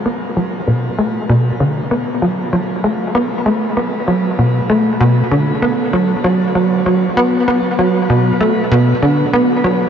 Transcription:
X:1
M:4/4
L:1/8
Q:1/4=97
K:Bm
V:1 name="Analog synth bass" clef=bass
B, F, B,, A, B,, D, B, F, | F, A, B, A, B, F, B,, A, | B,, D, B, F, F, F, F, B, | B, F, B,, A, B,, D, B, F, |]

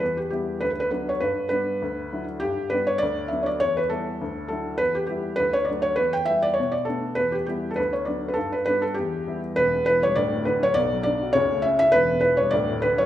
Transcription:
X:1
M:4/4
L:1/16
Q:"Swing" 1/4=202
K:Edor
V:1 name="Felt piano"
B2 G2 G4 (3B2 B2 B2 B2 c2 | B4 B8- B2 z2 | G4 B2 c2 d4 e3/2 c/2 d2 | c2 B2 A8 A4 |
B2 G2 G4 B2 c2 d2 c2 | B2 g2 e2 d2 c2 d2 A4 | B2 G2 G3 A B2 c2 d3 B | A2 B2 B2 A2 G6 z2 |
B4 B2 c2 d4 B2 c2 | d4 d4 c4 e2 e2 | B4 B2 c2 d4 B2 c2 |]
V:2 name="Upright piano" clef=bass
E,,4 [G,B,E]4 D,,4 [F,B,D]4 | G,,4 [G,B,D]4 D,,4 [F,DE]4 | G,,4 [G,B,D]4 D,,4 [F,B,D]4 | E,,4 [G,B,E]4 D,,4 [F,DE]4 |
E,,4 [G,B,E]4 D,,4 [F,A,D]4 | E,,4 [G,B,E]4 B,,4 [A,B,D]4 | E,,4 [G,B,E]4 D,,4 [F,B,D]4 | G,,4 [G,B,D]4 E,,4 [G,B,E]4 |
[E,,,E,,]2 B,,2 E,2 G,2 [D,,,D,,]2 A,,2 D,2 F,2 | [B,,,B,,]2 F,2 D2 F2 [C,,C,]2 A,2 C2 E2 | [E,,,E,,]2 B,,2 E,2 G,2 [D,,,D,,]2 A,,2 D,2 F,2 |]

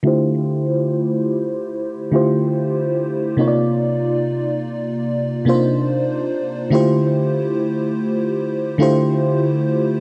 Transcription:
X:1
M:4/4
L:1/8
Q:1/4=72
K:Ddor
V:1 name="FM electric piano"
[D,A,EFGc]3 z2 [D,A,EFGc]2 z | [C,_B,_EF^cd]3 z2 [=C,B,DEF=c]2 z | [D,A,EFGc]3 z2 [D,A,EFGc]2 z |]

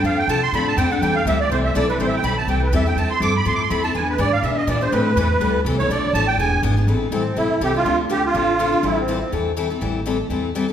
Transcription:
X:1
M:4/4
L:1/8
Q:"Swing" 1/4=246
K:Am
V:1 name="Accordion"
f g a c' b a g ^f | g f e d c e d B | (3c e g b a g B e g | a c' d' b (3c' d' c' b a |
^g B d f e ^d =d c | B6 z ^c | d2 a g ^g2 z2 | z2 C2 E2 G F- |
F z G F4- F | E C3 z4 | z8 |]
V:2 name="Steel-string acoustic guitar"
[D,F,CDA] z [D,F,CDA] z [D,F,CDA] z [D,F,CDA] [CDA] | [E,G,CEA] z [E,G,CEA] z [E,G,CEA] z [E,G,CEA] [CEA] | [E,G,CEA] z [E,G,CEA] z [E,G,CEA] z [E,G,CEA] [CEA] | [F,CEA] z [F,CEA] z [F,CEA] z [F,CEA] [CEA] |
[E,B,D^G] z [E,B,DG] z [E,B,DG] z [E,B,DG] [B,DG] | [E,G,CEA] z [E,G,CEA] z [E,G,CEA] z [E,G,CEA] [CEA] | [B,,F,A,DA] z [B,,F,A,DA] z [E,B,D^G] z [E,B,DG] [B,DG] | [E,G,CEA] z [E,G,CEA] z [E,G,CEA] z [E,G,CEA] [CEA] |
[D,F,CDA] z [D,F,CDA] z [D,F,CDA] z [D,F,CDA] [CDA] | [E,G,CEA] z [E,G,CEA] z [E,G,CEA] z [E,G,CEA] [CEA] | [E,G,CEA] z [E,G,CEA] z [E,G,CEA] z [E,G,CEA] [EA] |]
V:3 name="Upright bass" clef=bass
F,,2 C,2 A,,2 F,,2 | E,,2 D,,2 C,,2 B,,,2 | A,,,2 B,,,2 C,,2 E,,2 | F,,2 G,,2 A,,2 F,,2 |
E,,2 ^G,,2 B,,2 _B,,2 | A,,2 E,,2 D,,2 C,,2 | B,,,2 A,,,2 E,,,2 ^G,,,2 | A,,,2 A,,,2 B,,,2 C,,2 |
D,,4 A,,,4 | A,,,4 E,,4 | A,,,4 E,,4 |]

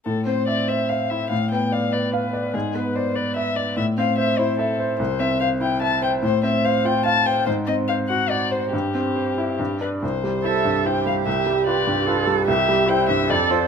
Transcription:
X:1
M:3/4
L:1/8
Q:1/4=146
K:Am
V:1 name="Violin"
A c d e f e | f g f d B2 | ^G B c d e d | e f e c A2 |
[K:C] c e f g a g | c e f g a g | c _e f _g d c | G4- G B |
c2 e2 g f | e2 d3 z | e2 g e d c |]
V:2 name="Cello"
z6 | z6 | z6 | z6 |
[K:C] z6 | z6 | z6 | z6 |
z2 A2 G2- | G4 A2 | G2 E2 A2 |]
V:3 name="Grand piano"
A,, C e c e E | A,, B, d B f d | ^G,, B, d B e d | A,, C c E e c |
[K:C] C,, C c E e c | A,, C c F f c | _A,, C c _G _g c | G,, C c E G,, [Dd] |
C,, G, [Ec] G,, [Ec] G, | C,, G, [FB] G,, [FB] G, | C,, G, [Ec] G,, F,, [Fd] |]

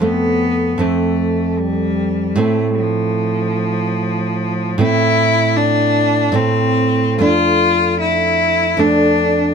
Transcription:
X:1
M:3/4
L:1/8
Q:1/4=76
K:Flyd
V:1 name="Cello"
B,2 A,2 G,2 | A, F,4- F, | E2 D2 C2 | F2 E2 D2 |]
V:2 name="Nylon-string guitar"
[F,,A,C]2 [F,,A,C]4 | [A,,A,C]6 | [A,,A,C]4 [A,,A,C]2 | [F,,A,D]4 [F,,A,D]2 |]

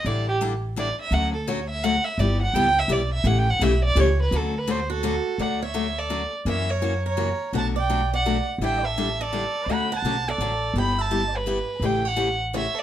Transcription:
X:1
M:3/4
L:1/16
Q:"Swing" 1/4=168
K:D
V:1 name="Violin"
d2 G2 z4 d2 e2 | f2 A2 c2 e2 f2 e2 | d2 f2 g2 e2 d2 e2 | (3f2 g2 f2 e2 d2 c2 B2 |
A2 B2 =c2 A6 | f2 e4 d4 z2 | e2 c4 c6 | a2 g4 f4 z2 |
g2 e4 d6 | b2 a4 d6 | b2 a4 B6 | g2 f4 z2 e2 d2 |]
V:2 name="Steel-string acoustic guitar"
z12 | z12 | z12 | z12 |
z6 F6 | d2 c4 A4 z2 | c2 ^A4 A6 | f2 d4 d4 z2 |
e2 A4 A6 | f2 f4 A6 | g2 e4 G6 | e2 c4 z2 c2 A2 |]
V:3 name="Steel-string acoustic guitar"
[D,G,DEA]2 z2 [D,G,DEA] z3 [D,G,DEA] z3 | [D,F,A,CF]2 z2 [D,F,A,CF] z3 [D,F,A,CF] z3 | [G,B,EG]2 z2 [G,B,EG] z3 [G,B,EG] z3 | [C,E,A,CG]2 z2 [C,E,A,CG] z3 [C,E,A,CG] z3 |
[D,F,A,CF]2 z2 [D,F,A,CF] z3 [D,F,A,CF] z3 | [D,F,A,CF]2 z2 [D,F,A,CF] z3 [D,F,A,CF] z3 | [C,E,^A,CF]2 z2 [C,E,A,CF] z3 [C,E,A,CF] z3 | [B,,F,A,DF]2 z2 [B,,F,A,DF] z3 [B,,F,A,DF] z3 |
[D,G,DEA]2 z2 [D,G,DEA] z3 [D,G,DEA] z3 | [D,F,A,CF]2 z2 [D,F,A,CF] z3 [D,F,A,CF] z3 | [G,B,EG]2 z2 [G,B,EG] z3 [G,B,EG] z3 | [C,E,A,CG]2 z2 [C,E,A,CG] z3 [C,E,A,CG] z3 |]
V:4 name="Upright bass" clef=bass
A,,,12 | D,,12 | G,,,4 C,,4 B,,,4 | A,,,4 B,,,4 C,,4 |
D,,12 | D,,12 | F,,12 | B,,,12 |
A,,,12 | D,,4 B,,,4 A,,,4 | G,,,12 | A,,,12 |]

